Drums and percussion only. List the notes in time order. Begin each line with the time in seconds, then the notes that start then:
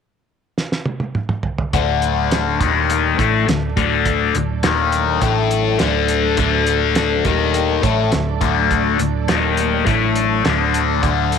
0.58 snare
0.72 snare
0.86 high tom
1.00 high tom
1.15 mid tom
1.29 mid tom
1.43 floor tom
1.58 floor tom
1.73 kick, closed hi-hat
2.02 closed hi-hat
2.31 snare, closed hi-hat
2.61 kick, closed hi-hat
2.90 closed hi-hat
3.19 kick, closed hi-hat
3.49 snare, closed hi-hat
3.77 kick, closed hi-hat
4.05 kick, closed hi-hat
4.35 closed hi-hat
4.63 snare, closed hi-hat
4.92 closed hi-hat
5.21 kick, closed hi-hat
5.51 closed hi-hat
5.79 snare, closed hi-hat
6.08 closed hi-hat
6.37 kick, closed hi-hat
6.66 closed hi-hat
6.95 snare, closed hi-hat
7.25 kick, closed hi-hat
7.54 closed hi-hat
7.83 kick, closed hi-hat
8.12 snare, closed hi-hat
8.41 kick, closed hi-hat
8.71 kick, closed hi-hat
8.99 closed hi-hat
9.28 snare, closed hi-hat
9.57 closed hi-hat
9.87 kick, closed hi-hat
10.15 closed hi-hat
10.45 snare, closed hi-hat
10.74 closed hi-hat
11.03 kick, closed hi-hat
11.32 closed hi-hat